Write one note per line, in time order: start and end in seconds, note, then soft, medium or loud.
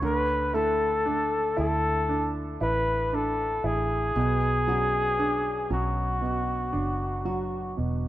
0.00 1.53 D2 medium
0.00 4.12 D3 medium
0.00 4.15 D3 medium
0.00 0.42 A3 soft
0.00 0.13 C#4 soft
0.00 0.55 A4 medium
0.05 0.56 B4 medium
0.54 2.57 A3 medium
0.54 1.06 A3 medium
0.54 1.57 E4 soft
0.54 1.58 A4 medium
0.54 3.13 A4 medium
1.05 4.27 A3 medium
1.05 2.07 D4 medium
1.57 2.57 D2 medium
1.57 2.60 E4 soft
1.57 4.27 E4 soft
1.57 2.31 A4 medium
2.09 3.11 D4 medium
2.61 3.60 A1 medium
2.61 3.63 E4 soft
2.61 3.16 B4 medium
3.13 4.13 D4 medium
3.13 3.67 A4 medium
3.64 4.12 A1 medium
3.64 4.14 E4 soft
3.64 5.72 G#4 medium
4.16 5.67 B1 medium
4.16 8.08 B2 medium
4.16 6.20 B2 medium
4.67 5.69 F#3 soft
4.67 5.70 C#4 medium
4.67 5.18 D4 medium
4.67 7.25 F#4 medium
5.19 6.71 D4 medium
5.19 8.08 D4 medium
5.70 6.70 B1 medium
5.70 7.24 F#3 soft
5.70 8.08 C#4 medium
5.70 7.75 F#4 medium
6.21 7.76 B2 soft
6.73 7.74 F#1 medium
6.73 8.08 D4 soft
7.25 8.08 F#3 soft
7.25 8.08 F#4 medium
7.77 8.08 E1 medium
7.77 8.08 B2 soft